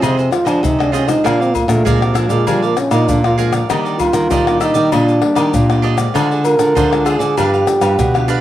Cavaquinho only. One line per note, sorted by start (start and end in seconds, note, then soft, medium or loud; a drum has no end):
0.01 0.16 F4 medium
0.01 0.16 G#4 medium
0.01 0.17 C5 medium
0.01 0.16 D#5 medium
0.17 0.30 G#4 soft
0.17 0.30 C5 soft
0.17 0.31 D#5 medium
0.31 muted cavaquinho stroke soft
0.45 0.77 G#4 medium
0.45 0.77 C5 medium
0.45 0.76 D#5 medium
0.79 0.92 G#4 soft
0.79 0.92 C5 soft
0.79 0.93 D#5 soft
0.92 1.07 F4 medium
0.92 1.07 G#4 medium
0.92 1.06 C5 medium
0.92 1.05 D#5 medium
1.06 1.23 G#4 soft
1.06 1.23 C5 soft
1.06 1.22 D#5 soft
1.24 1.39 G#4 medium
1.24 1.39 A#4 medium
1.24 1.39 D5 medium
1.24 1.39 F5 medium
1.40 1.53 A#4 soft
1.40 1.54 D5 soft
1.40 1.53 F5 soft
1.54 muted cavaquinho stroke soft
1.85 2.00 G#4 medium
1.85 2.00 A#4 medium
1.85 1.99 D5 medium
1.85 2.00 F5 medium
2.00 2.14 A#4 soft
2.00 2.15 D5 medium
2.00 2.14 F5 soft
2.14 2.30 G#4 medium
2.14 2.30 A#4 medium
2.14 2.28 D5 medium
2.14 2.29 F5 medium
2.29 2.46 A#4 medium
2.29 2.45 D5 medium
2.29 2.45 F5 medium
2.47 2.61 G#4 medium
2.47 2.62 A#4 medium
2.47 2.61 D5 medium
2.47 2.62 F5 medium
2.62 2.76 A#4 soft
2.62 2.77 D5 medium
2.62 2.76 F5 soft
2.77 muted cavaquinho stroke soft
2.91 3.23 A#4 medium
2.91 3.22 D5 medium
2.91 3.22 F5 medium
3.24 3.37 A#4 soft
3.24 3.38 D5 soft
3.24 3.38 F5 soft
3.38 3.53 G#4 medium
3.38 3.53 A#4 medium
3.38 3.51 D5 medium
3.38 3.52 F5 medium
3.52 3.69 A#4 soft
3.52 3.68 D5 soft
3.52 3.68 F5 soft
3.70 3.84 D4 medium
3.70 3.84 G4 medium
3.70 3.84 D5 medium
3.70 3.85 D#5 medium
3.85 3.98 G4 soft
3.85 3.99 D5 soft
3.85 3.98 D#5 soft
3.99 muted cavaquinho stroke soft
4.30 4.45 D4 medium
4.30 4.45 G4 medium
4.30 4.45 D5 medium
4.30 4.46 D#5 medium
4.47 4.59 G4 soft
4.47 4.61 D5 medium
4.47 4.60 D#5 soft
4.60 4.75 D4 medium
4.60 4.75 G4 medium
4.60 4.73 D5 medium
4.60 4.74 D#5 medium
4.74 4.91 G4 medium
4.74 4.90 D5 medium
4.74 4.90 D#5 medium
4.92 5.06 D4 medium
4.92 5.07 G4 medium
4.92 5.07 D5 medium
4.92 5.07 D#5 medium
5.08 5.21 G4 soft
5.08 5.21 D5 medium
5.08 5.21 D#5 soft
5.21 muted cavaquinho stroke soft
5.35 5.68 G4 medium
5.35 5.66 D5 medium
5.35 5.67 D#5 medium
5.70 5.82 G4 soft
5.70 5.83 D5 soft
5.70 5.83 D#5 soft
5.82 5.98 D4 medium
5.82 5.97 G4 medium
5.82 5.96 D5 medium
5.82 5.96 D#5 medium
5.97 6.13 G4 soft
5.97 6.12 D5 medium
5.97 6.13 D#5 soft
6.14 6.29 F4 medium
6.14 6.29 G#4 medium
6.14 6.29 C5 medium
6.14 6.30 D5 medium
6.31 6.44 G#4 soft
6.31 6.44 C5 soft
6.31 6.44 D5 medium
6.45 muted cavaquinho stroke soft
6.75 6.90 F4 medium
6.75 6.90 G#4 medium
6.75 6.91 C5 medium
6.75 6.90 D5 medium
6.91 7.05 G#4 soft
6.91 7.05 C5 soft
6.91 7.06 D5 medium
7.05 7.20 F4 medium
7.05 7.20 G#4 medium
7.05 7.19 C5 medium
7.05 7.18 D5 medium
7.19 7.36 G#4 medium
7.19 7.35 C5 medium
7.19 7.35 D5 medium
7.37 7.52 D4 medium
7.37 7.52 G4 medium
7.37 7.52 B4 medium
7.37 7.52 F5 medium
7.53 7.67 G4 soft
7.53 7.67 B4 soft
7.53 7.67 F5 medium
7.67 muted cavaquinho stroke soft
7.82 8.13 G4 medium
7.82 8.13 B4 medium
7.82 8.12 F5 medium
8.14 8.27 G4 soft
8.14 8.28 B4 soft
8.14 8.28 F5 medium
8.28 8.41 D4 medium
8.28 8.41 G4 medium
8.28 8.41 B4 medium
8.28 8.41 F5 medium